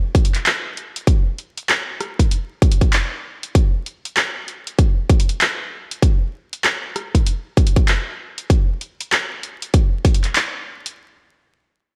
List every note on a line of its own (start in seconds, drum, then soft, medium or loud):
0.15 kick loud
0.15 closed hi-hat soft
0.25 closed hi-hat medium
0.35 clap soft
0.35 closed hi-hat medium
0.46 clap loud
0.46 closed hi-hat medium
0.77 closed hi-hat soft
0.96 closed hi-hat medium
1.07 kick loud
1.07 closed hi-hat medium
1.38 closed hi-hat soft
1.57 closed hi-hat medium
1.69 cross-stick soft
1.69 clap loud
1.69 closed hi-hat medium
2.00 cross-stick soft
2.00 closed hi-hat soft
2.19 kick medium
2.19 closed hi-hat medium
2.31 closed hi-hat medium
2.62 kick loud
2.62 closed hi-hat soft
2.72 closed hi-hat medium
2.81 kick loud
2.81 closed hi-hat medium
2.93 clap loud
2.93 closed hi-hat medium
3.43 closed hi-hat medium
3.55 kick loud
3.55 closed hi-hat medium
3.86 closed hi-hat soft
4.05 closed hi-hat medium
4.17 cross-stick soft
4.17 clap loud
4.17 closed hi-hat medium
4.48 closed hi-hat soft
4.67 closed hi-hat soft
4.79 kick loud
4.79 closed hi-hat medium
5.10 kick loud
5.10 closed hi-hat soft
5.20 closed hi-hat medium
5.29 closed hi-hat medium
5.41 clap loud
5.41 closed hi-hat medium
5.91 closed hi-hat medium
6.02 kick loud
6.02 closed hi-hat medium
6.53 closed hi-hat medium
6.64 cross-stick soft
6.64 clap loud
6.64 closed hi-hat medium
6.96 cross-stick soft
6.96 closed hi-hat soft
7.15 kick medium
7.15 closed hi-hat medium
7.26 closed hi-hat medium
7.57 kick loud
7.57 closed hi-hat soft
7.67 closed hi-hat medium
7.76 kick loud
7.76 closed hi-hat medium
7.88 clap loud
7.88 closed hi-hat medium
8.38 closed hi-hat medium
8.50 kick loud
8.50 closed hi-hat medium
8.81 closed hi-hat soft
9.00 closed hi-hat medium
9.12 cross-stick soft
9.12 clap loud
9.12 closed hi-hat medium
9.43 closed hi-hat soft
9.62 closed hi-hat medium
9.74 kick loud
9.74 closed hi-hat medium
10.05 kick loud
10.05 closed hi-hat soft
10.15 closed hi-hat medium
10.24 clap soft
10.24 closed hi-hat medium
10.36 clap loud
10.36 closed hi-hat medium
10.86 closed hi-hat medium